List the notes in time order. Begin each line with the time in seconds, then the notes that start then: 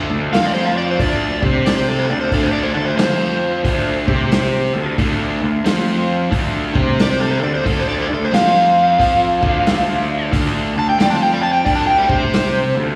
Already playing: A3 D4 F4 A4
0.10 D2 D3 A3
0.32 F2 F3 C4 F4 C5 F5, snare, open hi-hat
0.46 D5
0.54 C5
0.65 F5
0.78 D5
0.91 C5
0.99 D2 D3 A3 D4 F4 A4 D5, kick, open hi-hat
1.42 C3 G3 C4 G4 C5, kick
1.66 D5, snare, open hi-hat
1.77 C5
1.88 A4
1.99 C5
2.09 D2 D3 A3 D4 F4 A4 D5
2.21 C5
2.32 D2 D3 A3 D4 A4, kick, open hi-hat
2.43 C5
2.53 D5
2.63 C5
2.74 D2 D3 A3 A4
2.85 C5
2.97 F2 F3 C4 F4 C5, snare, open hi-hat
3.64 D2 D3 A3 D4 F4 A4, kick, open hi-hat
4.06 C3 G3 C4 G4 C5, kick
4.31 snare, open hi-hat
4.73 D2 D3 A3 D4 F4 A4
4.98 D2 D3 A3 D4, kick, open hi-hat
5.41 D2 D3 A3
5.64 F2 F3 C4 F4 C5, snare, open hi-hat
6.31 D2 D3 A3 D4 F4 A4, kick, open hi-hat
6.74 C3 G3 C4 G4 C5, kick
6.99 D5, snare, open hi-hat
7.11 C5
7.20 A4
7.31 C5
7.40 D2 D3 A3 D4 D5
7.45 F4 A4
7.55 C5
7.64 D2 D3 A3 D4 A4, kick, open hi-hat
7.79 C5
7.89 D5
8.00 C5
8.09 D2 D3 A3
8.14 A4
8.24 C5
8.31 F2 F3 C4 F4 C5 F5, snare, open hi-hat
8.98 F2 F3 A3 C4 D4 F4 A4, kick, open hi-hat
9.41 D2 D3 A3 D4 F4 C5, kick
9.66 snare, open hi-hat
10.31 D2 D3 A3 D4 F4 A4, kick, open hi-hat
10.75 D2 D3 A3 A5
10.89 G5
10.98 F2 F3 C4 F4 C5 D5, snare, open hi-hat
11.10 A5
11.23 G5
11.33 D5
11.43 A5
11.53 G5
11.64 D2 D3 A3 D4 F4 A4 D5, kick, open hi-hat
11.75 A5
11.87 G5
11.98 D5
12.05 G3 C4 G4 C5
12.10 C3 G4 C5, kick
12.33 snare, open hi-hat
12.74 D2 D3 A3 D4 F4 A4